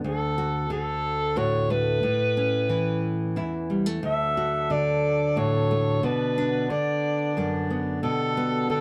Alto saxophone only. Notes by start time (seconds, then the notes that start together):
0.07 A4
0.72 A4
1.37 C#5
1.70 B4
4.05 E5
4.71 D5
5.37 C#5
6.04 B4
6.70 D5
8.03 A4
8.70 A4